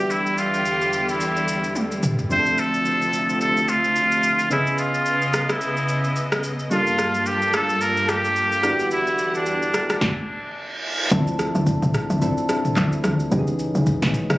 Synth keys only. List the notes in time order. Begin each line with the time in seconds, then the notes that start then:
Already playing: G3 B3 D4 G4 E5
2.29 F3 C4 D4 G4 E5
2.39 A4
4.50 C#3 B3 C#4 G#4 D#5
6.70 G3 A#3 D4 F4 A4
8.63 B3 D4 E4 F#4 G4
11.11 E3 C4 D4 E4 A4
11.18 F3
12.21 F3 C4 D4 E4 A4
12.49 F3 C4 D4 E4 A4
13.31 E3 B3 C#4 D#4 G4
13.39 G#4